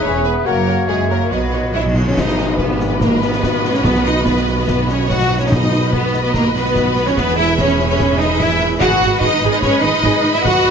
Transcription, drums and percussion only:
2.17 concert bass drum medium
2.17 snare medium
2.17 crash medium
2.17 tam-tam medium
2.28 snare medium
2.38 snare medium
2.59 concert bass drum medium
2.80 snare medium
3.01 concert bass drum medium
3.01 snare medium
3.22 snare medium
3.32 snare medium
3.43 concert bass drum medium
3.43 snare medium
3.65 snare medium
3.74 snare medium
3.85 concert bass drum medium
3.85 snare medium
3.95 snare medium
4.05 snare medium
4.26 concert bass drum medium
4.26 snare medium
4.36 snare soft
4.47 snare medium
4.68 concert bass drum medium
4.68 snare medium
4.89 snare medium
5.10 concert bass drum medium
5.10 snare medium
5.52 concert bass drum medium
5.52 snare medium
5.52 crash soft
5.62 snare medium
5.72 snare medium
5.93 concert bass drum medium
6.14 snare medium
6.34 concert bass drum medium
6.34 snare medium
6.55 snare medium
6.66 snare medium
6.76 concert bass drum medium
6.76 snare medium
6.96 snare medium
7.07 snare medium
7.17 concert bass drum medium
7.17 snare medium
7.28 snare medium
7.38 snare medium
7.58 concert bass drum medium
7.58 snare medium
7.68 snare medium
7.79 snare medium
8.00 concert bass drum medium
8.00 snare medium
8.20 snare medium
8.40 concert bass drum medium
8.40 snare medium
8.81 concert bass drum medium
8.81 snare medium
8.81 crash soft
8.91 snare medium
9.01 snare medium
9.21 concert bass drum medium
9.42 snare medium
9.62 concert bass drum medium
9.62 snare medium
9.83 snare medium
9.94 snare medium
10.03 concert bass drum medium
10.03 snare medium
10.24 snare medium
10.35 snare medium
10.45 concert bass drum medium
10.45 snare medium
10.56 snare medium
10.66 snare medium

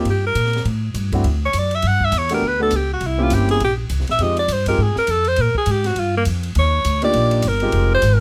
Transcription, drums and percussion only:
0.05 ride medium
0.35 hi-hat pedal medium
0.35 ride medium
0.46 snare soft
0.53 snare soft
0.53 ride soft
0.65 ride medium
0.94 hi-hat pedal soft
0.94 ride medium
1.12 kick medium
1.12 ride soft
1.24 ride medium
1.53 hi-hat pedal medium
1.53 ride medium
1.71 ride soft
1.82 ride medium
2.01 kick soft
2.12 hi-hat pedal medium
2.12 ride medium
2.29 ride medium
2.71 hi-hat pedal medium
2.71 ride medium
3.01 ride medium
3.30 hi-hat pedal medium
3.30 ride medium
3.49 ride soft
3.60 ride medium
3.89 hi-hat pedal medium
3.89 ride medium
4.01 snare soft
4.07 snare soft
4.07 ride soft
4.19 ride medium
4.37 ride soft
4.48 hi-hat pedal medium
4.48 ride medium
4.66 kick soft
4.66 ride medium
4.96 snare soft
5.07 hi-hat pedal medium
5.07 ride medium
5.24 ride soft
5.36 ride medium
5.55 kick soft
5.66 hi-hat pedal medium
5.66 ride medium
5.84 snare soft
5.84 ride soft
5.96 ride medium
6.25 hi-hat pedal medium
6.25 ride medium
6.43 ride soft
6.55 ride medium
6.85 hi-hat pedal medium
6.85 ride medium
7.02 ride soft
7.13 ride medium
7.31 ride soft
7.42 hi-hat pedal medium
7.42 ride medium
7.60 ride soft
7.72 ride medium
8.02 hi-hat pedal medium
8.02 ride medium

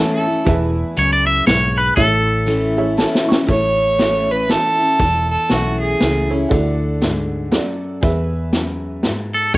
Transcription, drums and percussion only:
0.47 kick loud
0.47 closed hi-hat medium
0.97 closed hi-hat medium
1.47 snare loud
1.47 closed hi-hat medium
1.97 kick loud
1.97 closed hi-hat medium
2.48 closed hi-hat medium
2.98 snare medium
3.15 snare medium
3.32 snare loud
3.49 kick medium
3.49 closed hi-hat medium
3.99 snare medium
3.99 closed hi-hat medium
4.49 snare medium
4.49 closed hi-hat medium
5.00 kick loud
5.00 closed hi-hat medium
5.50 snare medium
5.50 closed hi-hat medium
6.00 snare medium
6.00 closed hi-hat medium
6.51 kick loud
6.51 closed hi-hat medium
7.02 snare medium
7.02 closed hi-hat medium
7.52 snare medium
7.52 closed hi-hat medium
8.03 kick loud
8.03 closed hi-hat medium
8.53 snare medium
8.53 closed hi-hat medium
9.03 snare medium
9.03 closed hi-hat medium
9.54 kick medium
9.54 closed hi-hat medium

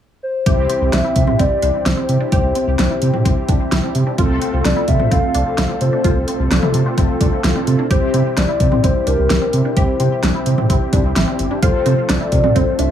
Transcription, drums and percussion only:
0.46 kick loud
0.46 closed hi-hat medium
0.70 closed hi-hat medium
0.93 snare loud
0.93 closed hi-hat medium
1.16 kick medium
1.16 closed hi-hat medium
1.27 mid tom medium
1.39 kick medium
1.39 closed hi-hat medium
1.62 closed hi-hat medium
1.86 snare loud
1.86 closed hi-hat medium
2.09 closed hi-hat medium
2.32 kick loud
2.32 closed hi-hat medium
2.55 closed hi-hat medium
2.79 snare loud
2.79 closed hi-hat medium
3.02 closed hi-hat medium
3.14 mid tom medium
3.25 kick medium
3.25 closed hi-hat medium
3.49 kick medium
3.49 closed hi-hat medium
3.72 snare loud
3.72 closed hi-hat medium
3.95 closed hi-hat medium
4.18 kick loud
4.18 closed hi-hat medium
4.42 closed hi-hat medium
4.65 snare loud
4.65 closed hi-hat medium
4.88 kick medium
4.88 closed hi-hat medium
5.00 mid tom medium
5.11 kick medium
5.11 closed hi-hat medium
5.34 closed hi-hat medium
5.58 snare loud
5.58 closed hi-hat medium
5.81 closed hi-hat medium
6.04 kick loud
6.04 closed hi-hat medium
6.28 closed hi-hat medium
6.51 snare loud
6.51 closed hi-hat medium
6.63 mid tom medium
6.74 closed hi-hat medium
6.98 kick medium
6.98 closed hi-hat medium
7.21 kick medium
7.21 closed hi-hat medium
7.44 snare loud
7.44 closed hi-hat medium
7.67 closed hi-hat medium
7.91 kick loud
7.91 closed hi-hat medium
8.14 closed hi-hat medium
8.37 snare loud
8.37 closed hi-hat medium
8.60 kick medium
8.60 closed hi-hat medium
8.72 mid tom medium
8.84 kick medium
8.84 closed hi-hat medium
9.07 closed hi-hat medium
9.30 snare loud
9.30 closed hi-hat medium
9.53 closed hi-hat medium
9.77 kick loud
9.77 closed hi-hat medium
10.00 closed hi-hat medium
10.23 snare loud
10.23 closed hi-hat medium
10.46 closed hi-hat medium
10.58 mid tom medium
10.70 kick medium
10.70 closed hi-hat medium
10.93 kick medium
10.93 closed hi-hat medium
11.16 snare loud
11.16 closed hi-hat medium
11.39 closed hi-hat medium
11.63 kick loud
11.63 closed hi-hat medium
11.86 closed hi-hat medium
12.09 snare loud
12.09 closed hi-hat medium
12.32 kick medium
12.32 closed hi-hat medium
12.44 mid tom medium
12.56 kick medium
12.56 closed hi-hat medium
12.79 closed hi-hat medium

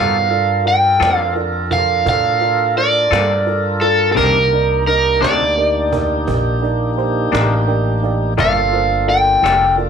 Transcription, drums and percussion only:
0.31 cajon slap soft
0.66 cajon slap soft
1.02 cajon slap medium
1.36 cajon slap soft
1.71 cajon bass medium
1.71 cajon slap soft
2.06 cajon bass medium
2.42 cajon slap soft
2.77 cajon slap soft
3.13 cajon slap loud
3.47 cajon slap soft
3.81 cajon slap soft
4.17 cajon bass medium
4.52 cajon slap soft
4.87 cajon slap soft
5.24 cajon slap medium
5.58 cajon slap soft
5.93 cajon bass medium
6.28 cajon bass medium
6.63 cajon slap soft
6.98 cajon slap soft
7.35 cajon slap medium
7.68 cajon slap soft
8.03 cajon slap soft
8.05 cajon slap soft
8.38 cajon bass loud
8.74 cajon slap soft
9.08 cajon slap soft
9.46 cajon slap medium
9.78 cajon slap soft

